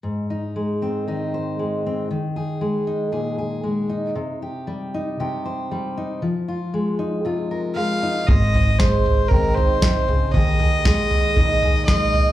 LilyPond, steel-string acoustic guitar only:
\new Staff \with { instrumentName = "Steel-string acoustic guitar" } { \time 4/4 \key aes \major \tempo 4 = 116 << { r8 ees'4 c'8 ees'8 c''4 c'8 | r8 aes'4 ees'8 aes'8 aes'4 ees'8 | r8 g'4 ees'8 g'8 c''4 ees'8 | r8 f'4 ees'8 f'8 bes'4 ees'8 |
c''8 ees'4. c'8 ees'4. | aes'8 aes'4. ees'8 aes'4 ees'8 | } \\ { aes,4 aes4 ees4 aes4 | ees4 aes4 bes,4 aes4 | c4 g4 c4 g4 | f4 aes4 c4 aes4 |
aes,4 aes4 ees4 c8 des8 | ees4 aes4 bes,4 aes4 | } >> }